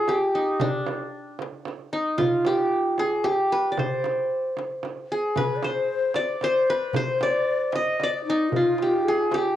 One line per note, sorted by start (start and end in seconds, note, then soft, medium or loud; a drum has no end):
0.00 0.19 D#4 medium
0.00 0.37 F4 medium
0.00 0.15 G#4 medium
0.08 1.34 G4 medium
0.08 darbuka tek medium
0.08 frame drum medium
0.35 0.67 D#4 medium
0.60 1.99 D4 medium
0.60 frame drum medium
0.60 darbuka dum medium
0.86 darbuka tek medium
0.86 frame drum medium
1.39 darbuka tek medium
1.39 frame drum medium
1.65 darbuka tek medium
1.65 frame drum medium
1.93 3.37 D#4 medium
2.18 3.52 F4 medium
2.18 frame drum medium
2.18 darbuka dum medium
2.45 3.05 G4 medium
2.45 darbuka tek medium
2.45 frame drum medium
2.98 3.30 G#4 medium
2.98 darbuka tek medium
2.98 frame drum medium
3.24 4.50 G4 medium
3.24 darbuka tek medium
3.24 frame drum medium
3.52 3.85 B4 medium
3.72 4.70 D5 medium
3.77 5.14 C5 medium
3.77 frame drum medium
3.77 darbuka dum medium
4.04 darbuka tek medium
4.04 frame drum medium
4.32 darbuka ka soft
4.57 darbuka tek medium
4.57 frame drum medium
4.83 darbuka tek medium
4.83 frame drum medium
5.12 6.32 G#4 medium
5.12 darbuka ka soft
5.34 5.58 B4 medium
5.34 5.70 B4 medium
5.34 frame drum medium
5.34 darbuka dum medium
5.56 5.65 D5 medium
5.63 6.17 C5 medium
5.63 6.43 C5 medium
5.63 darbuka tek medium
5.63 frame drum medium
6.14 7.14 D5 medium
6.14 6.44 D5 medium
6.14 darbuka tek medium
6.14 frame drum medium
6.41 6.94 C5 medium
6.41 6.76 C5 loud
6.41 darbuka tek medium
6.41 frame drum medium
6.70 7.02 B4 medium
6.93 7.20 C5 medium
6.93 8.02 C5 medium
6.93 darbuka dum medium
6.93 frame drum medium
7.19 7.73 D5 medium
7.19 7.81 D5 medium
7.19 darbuka tek medium
7.19 frame drum medium
7.72 7.99 D#5 medium
7.72 8.09 D#5 medium
7.72 darbuka tek medium
7.72 frame drum medium
7.97 8.24 D5 medium
7.97 darbuka tek medium
7.97 frame drum medium
8.03 8.35 D5 medium
8.25 8.51 D#4 medium
8.29 9.56 D#4 medium
8.49 9.04 F4 medium
8.49 frame drum medium
8.49 darbuka dum medium
8.56 9.56 F4 medium
8.78 darbuka tek medium
8.82 9.14 G4 medium
9.03 9.29 G#4 medium
9.08 9.40 G#4 medium
9.30 9.55 G4 medium
9.30 darbuka tek medium
9.30 frame drum medium
9.34 9.56 G4 medium